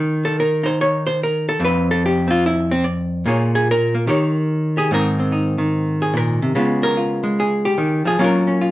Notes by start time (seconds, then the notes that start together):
Already playing: D#3
0.25 A4
0.40 A#4
0.63 D#4 C5
0.81 C#5
1.07 C5
1.23 A#4
1.49 A4
1.60 F2 C4
1.65 B4
1.91 A4
2.06 G4
2.28 C4 F4
2.46 E4
2.71 C4
2.84 D5
3.26 A#2 A#3 F4 G#4 C#5
3.55 G#4
3.71 A#4
3.95 A#3
4.07 D#3 G4 A#4 C#5
4.77 G4 G#4
4.91 G#2 D#3 C4 D#4 A#4
5.20 C4
5.32 D#4
5.58 D#3
6.02 G#4
6.14 A#2 A#4
6.42 C3
6.55 C#3 G#3 B3 F4
6.83 A#4
6.97 F4
7.24 G#3
7.40 G#4
7.65 G4
7.78 D#3
8.05 F3 G#4
8.19 F#3 A#3 C#4 F4
8.24 A#4
8.47 C#4
8.61 F4